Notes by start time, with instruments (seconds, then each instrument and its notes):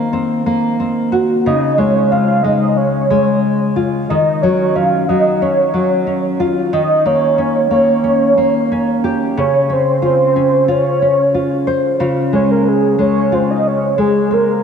Already playing: nylon-string guitar D#3 A#3 C4
0.13 nylon-string guitar C4
0.46 nylon-string guitar A#3
0.80 nylon-string guitar C4
1.12 nylon-string guitar F#4
1.46 nylon-string guitar C#3, soft synth lead D#5
1.78 nylon-string guitar G#3, soft synth lead C#5
2.11 nylon-string guitar C4, soft synth lead F5
2.43 nylon-string guitar G#3, soft synth lead D#5
2.77 soft synth lead C#5
3.10 nylon-string guitar G#3
3.76 nylon-string guitar F4
4.09 nylon-string guitar D#3, soft synth lead D#5
4.42 nylon-string guitar F#3, soft synth lead C#5
4.75 nylon-string guitar C#4, soft synth lead F5
5.08 nylon-string guitar F#3, soft synth lead D#5
5.42 nylon-string guitar C#4, soft synth lead C#5
5.74 nylon-string guitar F#3
6.07 nylon-string guitar C#4
6.40 nylon-string guitar F4
6.73 nylon-string guitar D#3, soft synth lead D#5
7.06 nylon-string guitar A#3, soft synth lead C#5
7.38 nylon-string guitar C#4
7.71 nylon-string guitar A#3, soft synth lead C#5
8.04 nylon-string guitar C#4
8.38 nylon-string guitar A#3
8.72 nylon-string guitar C#4
9.04 nylon-string guitar G4
9.37 nylon-string guitar C#3, soft synth lead C#5
9.70 nylon-string guitar C#4, soft synth lead C5
10.02 nylon-string guitar F4, soft synth lead C5
10.36 nylon-string guitar C#4
10.68 nylon-string guitar F4, soft synth lead C#5
11.02 nylon-string guitar C#4
11.34 nylon-string guitar F4
11.67 nylon-string guitar C5
12.00 nylon-string guitar C#3 F4
12.33 nylon-string guitar G#3, soft synth lead C#5
12.51 soft synth lead A#4
12.68 soft synth lead G#4
12.99 nylon-string guitar G#3, soft synth lead C#5
13.32 nylon-string guitar F4, soft synth lead C5
13.50 soft synth lead D#5
13.67 soft synth lead C#5
13.98 nylon-string guitar G#3, soft synth lead G#4
14.31 nylon-string guitar C4, soft synth lead A#4